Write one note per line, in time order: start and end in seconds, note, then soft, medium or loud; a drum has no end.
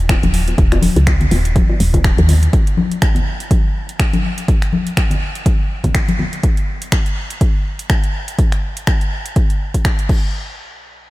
0.00 0.16 D#1 medium
0.09 finger snap loud
0.09 kick loud
0.09 closed hi-hat medium
0.09 high bongo medium
0.23 0.53 D#1 medium
0.23 closed hi-hat soft
0.23 high conga loud
0.34 open hi-hat loud
0.48 closed hi-hat medium
0.48 high bongo soft
0.58 0.90 D#1 loud
0.58 kick loud
0.58 closed hi-hat medium
0.72 finger snap soft
0.72 closed hi-hat soft
0.72 high bongo medium
0.82 open hi-hat loud
0.82 high conga medium
0.96 1.26 C#2 medium
0.96 closed hi-hat soft
1.07 finger snap loud
1.07 kick loud
1.07 closed hi-hat medium
1.07 high bongo medium
1.20 closed hi-hat soft
1.20 low conga medium
1.31 1.63 D#1 medium
1.31 open hi-hat medium
1.31 high bongo medium
1.45 closed hi-hat soft
1.56 kick loud
1.56 closed hi-hat medium
1.56 high conga medium
1.70 high bongo soft
1.80 2.12 D#1 loud
1.80 open hi-hat loud
1.94 kick medium
1.94 closed hi-hat soft
1.94 high bongo medium
1.94 low conga medium
2.04 finger snap loud
2.04 kick loud
2.04 closed hi-hat medium
2.17 2.48 D#2 medium
2.17 closed hi-hat soft
2.17 high conga medium
2.28 open hi-hat medium
2.28 high bongo medium
2.28 low conga medium
2.43 closed hi-hat soft
2.53 kick loud
2.53 closed hi-hat medium
2.67 closed hi-hat soft
2.77 high conga medium
2.92 closed hi-hat soft
3.02 finger snap loud
3.02 kick loud
3.02 closed hi-hat medium
3.15 closed hi-hat soft
3.15 low conga medium
3.40 closed hi-hat soft
3.50 kick loud
3.50 closed hi-hat medium
3.50 high conga medium
3.89 closed hi-hat soft
4.00 finger snap loud
4.00 kick loud
4.00 closed hi-hat medium
4.13 closed hi-hat soft
4.13 high conga medium
4.38 closed hi-hat soft
4.48 kick loud
4.48 closed hi-hat medium
4.62 finger snap soft
4.62 closed hi-hat soft
4.73 high conga medium
4.87 closed hi-hat soft
4.97 finger snap loud
4.97 kick loud
4.97 closed hi-hat medium
5.10 closed hi-hat soft
5.10 low conga medium
5.35 closed hi-hat soft
5.46 kick loud
5.46 closed hi-hat medium
5.46 high conga medium
5.84 kick medium
5.84 closed hi-hat soft
5.84 low conga medium
5.95 finger snap loud
5.95 kick loud
5.95 closed hi-hat medium
6.08 closed hi-hat soft
6.08 high conga medium
6.19 low conga medium
6.33 closed hi-hat soft
6.43 kick loud
6.43 closed hi-hat medium
6.57 closed hi-hat soft
6.82 closed hi-hat soft
6.92 finger snap loud
6.92 kick loud
6.92 closed hi-hat medium
7.06 closed hi-hat soft
7.30 closed hi-hat medium
7.41 kick loud
7.41 closed hi-hat medium
7.79 closed hi-hat soft
7.90 finger snap loud
7.90 kick loud
7.90 closed hi-hat medium
8.04 closed hi-hat soft
8.28 closed hi-hat soft
8.39 kick loud
8.39 closed hi-hat medium
8.52 finger snap soft
8.52 closed hi-hat soft
8.77 closed hi-hat soft
8.87 finger snap loud
8.87 kick loud
8.87 closed hi-hat medium
9.01 closed hi-hat soft
9.26 closed hi-hat soft
9.36 kick loud
9.36 closed hi-hat medium
9.50 closed hi-hat soft
9.74 kick medium
9.74 closed hi-hat medium
9.85 finger snap loud
9.85 kick loud
9.85 closed hi-hat medium
9.99 closed hi-hat soft
10.09 kick loud
10.09 crash medium